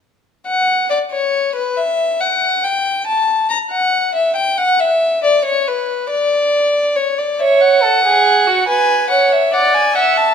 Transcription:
<<
  \new Staff \with { instrumentName = "Violin" } { \time 4/4 \key fis \phrygian \tempo 4 = 70 r8 fis''8 d''16 cis''8 b'16 e''8 fis''8 g''8 a''8 | ais''16 fis''8 e''16 g''16 fis''16 e''8 d''16 cis''16 b'8 d''4 | cis''16 d''16 e''16 fis''4~ fis''16 gis''8 fis''16 e''16 fis''16 gis''16 fis''16 a''16 | }
  \new Staff \with { instrumentName = "Violin" } { \time 4/4 \key fis \phrygian r1 | r1 | r8 cis''8 a'16 gis'8 fis'16 b'8 cis''8 d''8 e''8 | }
>>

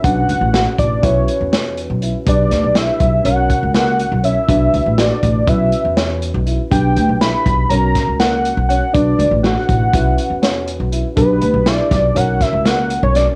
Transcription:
<<
  \new Staff \with { instrumentName = "Analog synth lead" } { \time 9/8 \key b \minor \tempo 4. = 81 fis''4. d''8 cis''4 r4. | d''4 e''4 fis''4 fis''4 e''8~ | e''4 d''4 e''4 r4. | g''4 b''4 ais''4 fis''4 fis''8 |
d''4 fis''2. r8 | b'4 d''4 fis''8 e''8 fis''8. cis''16 d''8 | }
  \new Staff \with { instrumentName = "Tine electric piano" } { \time 9/8 \key b \minor <cis' fis' b'>2 <cis' fis' b'>2~ <cis' fis' b'>8 | <d' g' b'>2 <cis' fis' ais'>2~ <cis' fis' ais'>8 | <d' fis' b'>2 <cis' fis' b'>2~ <cis' fis' b'>8 | <d' g' b'>2 <cis' fis' ais'>2~ <cis' fis' ais'>8 |
<d' fis' b'>2 <cis' fis' b'>2~ <cis' fis' b'>8 | <d' g' b'>2 <cis' fis' ais'>2~ <cis' fis' ais'>8 | }
  \new Staff \with { instrumentName = "Grand piano" } { \time 9/8 \key b \minor d'4 fis'4 e'4 cis'4 e'8 | d'4 e'4 cis'4 ais4 cis'8 | d'4 fis'4 e'4 cis'4 e'8 | d'4 e'4 cis'4 ais4 cis'8 |
d'4 fis'4 e'4 cis'4 e'8 | d'4 e'4 cis'4 ais4 cis'8 | }
  \new Staff \with { instrumentName = "Upright bass" } { \clef bass \time 9/8 \key b \minor b,,8 cis,16 a,,8 r16 a,,8 b,,8 r16 e,4 b,,8 r16 | b,,8 d,16 b,,8 r16 b,,8 b,,8 r16 cis,4 b,,8 r16 | b,,8 cis,16 a,,8 r16 a,,8 b,,8 r16 e,4 b,,8 r16 | b,,8 d,16 b,,8 r16 b,,8 b,,8 r16 cis,4 b,,8 r16 |
b,,8 cis,16 a,,8 r16 a,,8 b,,8 r16 e,4 b,,8 r16 | b,,8 d,16 b,,8 r16 b,,8 b,,8 r16 cis,4 b,,8 r16 | }
  \new DrumStaff \with { instrumentName = "Drums" } \drummode { \time 9/8 <hh bd>8 hh8 <hh sn>8 <hh bd>8 <hh bd>8 hh8 <hh sn>8 hh8 hh8 | <hh bd>8 <hh sn>8 <hh sn>8 <hh bd>8 hh8 <hh bd>8 <hh sn>8 hh8 hh8 | <hh bd>8 hh8 <hh sn>8 <hh bd>8 <hh bd>8 hh8 <hh sn>8 hh8 hh8 | <hh bd>8 hh8 <hh sn>8 <hh bd>8 hh8 <hh bd sn>8 <hh sn>8 hh8 hh8 |
<hh bd>8 hh8 <hh sn>8 <hh bd>8 <hh bd>8 hh8 <hh sn>8 hh8 hh8 | <hh bd>8 hh8 <hh sn>8 <hh bd sn>8 hh8 <hh bd sn>8 <hh sn>8 hh8 <hh sn>8 | }
>>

